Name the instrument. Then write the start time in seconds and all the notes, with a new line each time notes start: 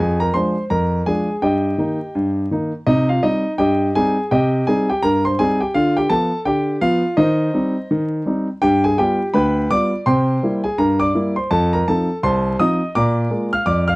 grand piano
0.00 F2 G#4 G#5
0.20 A#4 A#5
0.34 F3 G#3 D4 C5 C6
0.70 F2 A#4 A#5
1.06 F3 G#3 D4 G#4 G#5
1.42 G2 G4 D#5 G5
1.78 D#3 A#3 D#4
2.15 G2
2.51 D#3 A#3 D#4
2.87 C3 D#4 D#5
3.09 F4 F5
3.23 G3 C4 D#4 D#5
3.58 G2 G4 D#5 G5
3.95 G3 C4 D#4 G#4 G#5
4.31 C3 G4 D#5 G5
4.67 G3 C4 D#4 G#4 G#5
4.89 G4 G5
5.03 G2 A#4 A#5
5.25 C5 C6
5.39 G3 C4 D#4 G#4 G#5
5.60 G4 G5
5.74 D3 F4 F5
5.97 G4 G5
6.10 F3 B3 A4 A5
6.45 D3 G4 G5
6.81 F3 B3 F4 F5
7.17 D#3 D#4 C5 D#5
7.54 G3 C4 D#4
7.91 D#3
8.26 G3 C4 D#4
8.62 G2 G4 G5
8.84 G#4 G#5
8.98 G3 B3 F4 G4 G5
9.34 D2 B4 G5 B5
9.71 G3 B3 F4 D5 D6
10.06 C3 C5 G5 C6
10.43 G3 A#3 E4
10.64 G#4 G#5
10.78 G2 A#4 A#5
11.00 D5 D6
11.15 G3 A#3 E4
11.36 C5 C6
11.51 F2 A4 A5
11.73 A#4 A#5
11.88 F3 C4 D#4 A4 A5
12.23 C2 C5 A5 C6
12.60 F3 C4 D#4 D#5 D#6
12.95 A#2 D5 A#5 D6
13.31 G#3 A#3 F4
13.53 F5 F6
13.66 F2 D5 D6
13.88 F5 F6